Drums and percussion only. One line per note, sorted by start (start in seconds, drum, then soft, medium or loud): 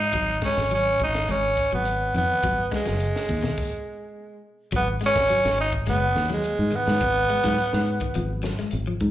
0.12 kick medium
0.12 closed hi-hat medium
0.41 kick medium
0.41 snare medium
0.41 closed hi-hat soft
0.57 snare medium
0.70 closed hi-hat medium
0.99 kick medium
0.99 closed hi-hat soft
1.14 snare medium
1.14 closed hi-hat soft
1.28 snare soft
1.28 closed hi-hat medium
1.57 kick medium
1.57 snare soft
1.57 closed hi-hat soft
1.85 closed hi-hat medium
2.15 closed hi-hat soft
2.43 kick medium
2.43 closed hi-hat medium
2.72 kick medium
2.72 snare medium
2.72 closed hi-hat medium
2.86 snare medium
2.86 closed hi-hat medium
3.00 closed hi-hat medium
3.16 snare medium
3.28 kick medium
3.28 snare soft
3.28 open hi-hat medium
3.43 snare medium
3.43 closed hi-hat medium
3.57 kick medium
3.57 crash medium
4.72 kick medium
4.72 closed hi-hat medium
5.01 snare soft
5.01 closed hi-hat soft
5.16 kick medium
5.16 snare medium
5.30 closed hi-hat medium
5.45 snare medium
5.58 open hi-hat medium
5.73 kick medium
5.73 closed hi-hat medium
5.86 snare soft
5.86 closed hi-hat medium
6.15 snare medium
6.15 closed hi-hat medium
6.30 snare soft
6.30 closed hi-hat medium
6.44 closed hi-hat medium
6.72 closed hi-hat soft
6.87 snare medium
6.87 closed hi-hat medium
7.00 kick medium
7.00 closed hi-hat medium
7.29 closed hi-hat medium
7.44 kick medium
7.44 snare medium
7.58 closed hi-hat medium
7.73 snare medium
7.87 closed hi-hat medium
8.00 kick medium
8.00 closed hi-hat medium
8.15 closed hi-hat medium
8.43 snare medium
8.43 closed hi-hat medium
8.59 snare soft
8.71 closed hi-hat medium
9.00 kick medium
9.00 closed hi-hat soft